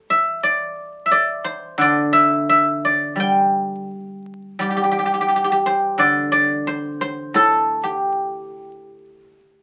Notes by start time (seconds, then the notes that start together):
Already playing: G4 A4
0.10 E5
0.43 D5
1.06 E5
1.11 D5
1.44 C5
1.78 D3 D5
2.13 E5
2.49 E5
2.85 D5
3.16 G3
3.20 G5
4.59 G3 G4
4.70 G4
4.77 G4
4.84 G4
4.91 G4
4.99 G4
5.06 G4
5.14 G4
5.21 G4
5.28 G4
5.36 G4
5.44 G4
5.52 G4
5.66 C5
5.98 D3 D5
6.32 D5
6.67 C5
7.01 C5
7.34 A2 A4
7.83 G4